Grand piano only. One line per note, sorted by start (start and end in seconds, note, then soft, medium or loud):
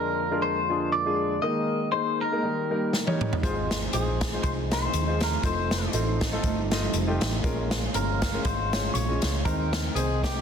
0.00 0.20 G#3 medium
0.00 0.21 D4 medium
0.00 0.21 F4 medium
0.00 0.21 A#4 medium
0.31 0.57 G#3 medium
0.31 0.57 D4 medium
0.31 0.57 F4 medium
0.31 0.57 A#4 medium
0.70 0.93 G#3 medium
0.70 0.93 D4 medium
0.70 0.93 F4 medium
0.70 0.93 G#4 medium
1.05 1.31 G#3 medium
1.05 1.32 D4 medium
1.05 1.32 F4 medium
1.05 1.32 G#4 medium
1.42 2.17 D#3 medium
1.42 1.78 G#3 medium
1.42 1.78 A#3 medium
1.42 1.79 D#4 medium
1.42 1.79 A#4 medium
1.91 2.20 G#3 medium
1.91 2.21 A#3 medium
1.91 2.21 D#4 medium
1.91 2.21 C5 medium
2.32 2.43 G#3 medium
2.32 2.43 A#3 medium
2.32 2.43 D#4 medium
2.32 2.43 A#4 medium
2.43 3.17 D#3 medium
2.70 2.93 G3 medium
2.70 2.94 A#3 medium
2.70 2.94 D#4 medium
2.70 2.94 A#4 medium
3.06 3.32 G3 medium
3.06 3.32 A#3 medium
3.06 3.32 D#4 medium
3.06 3.33 C#5 medium
3.43 4.17 G#2 medium
3.43 3.79 G#3 medium
3.43 3.79 D#4 medium
3.43 3.79 F4 medium
3.43 3.79 C5 medium
3.93 4.22 G#3 medium
3.93 4.22 D#4 medium
3.93 4.22 F4 medium
3.93 4.22 C5 medium
4.32 4.58 G#3 medium
4.32 4.58 D#4 medium
4.32 4.58 F4 medium
4.32 4.59 C5 medium
4.72 4.94 G#3 medium
4.72 4.94 D#4 medium
4.72 4.94 F4 medium
4.72 4.95 A#4 medium
5.07 5.33 G#3 medium
5.07 5.33 D#4 medium
5.07 5.33 F4 medium
5.07 5.33 C5 medium
5.43 5.80 A3 medium
5.43 5.80 D#4 medium
5.43 5.80 F4 medium
5.43 5.80 C5 medium
5.93 6.22 A3 medium
5.93 6.22 D#4 medium
5.93 6.22 F4 medium
5.93 6.23 C5 medium
6.32 6.58 A3 medium
6.32 6.58 D#4 medium
6.32 6.58 F4 medium
6.32 6.58 A4 medium
6.71 6.94 A3 medium
6.71 6.94 D#4 medium
6.71 6.95 F4 medium
6.71 6.95 D#5 medium
7.07 7.33 A3 medium
7.07 7.33 D#4 medium
7.07 7.33 F4 medium
7.07 7.34 G4 medium
7.43 8.18 A#2 medium
7.43 7.80 G#3 medium
7.43 7.80 C#4 medium
7.43 7.80 F4 medium
7.43 7.80 A#4 medium
7.94 8.23 G#3 medium
7.94 8.23 C#4 medium
7.94 8.23 F4 medium
7.94 8.23 A#4 medium
8.33 8.45 G#3 medium
8.33 8.45 C#4 medium
8.33 8.45 F4 medium
8.33 8.45 A#4 medium
8.46 9.20 G#2 medium
8.73 8.95 G#3 medium
8.73 8.96 C#4 medium
8.73 8.96 F4 medium
8.73 8.96 C#5 medium
9.09 9.34 G#3 medium
9.09 9.34 C#4 medium
9.09 9.35 F4 medium
9.09 9.35 D#5 medium
9.45 10.19 D#3 medium
9.45 9.81 G#3 medium
9.45 9.81 C4 medium
9.45 9.81 D#4 medium
9.45 9.81 C5 medium
9.96 10.24 G#3 medium
9.96 10.24 C4 medium
9.96 10.24 D#4 medium
9.96 10.24 C5 medium
10.34 10.41 G#3 medium
10.34 10.41 C4 medium
10.34 10.41 D#4 medium
10.34 10.41 G4 medium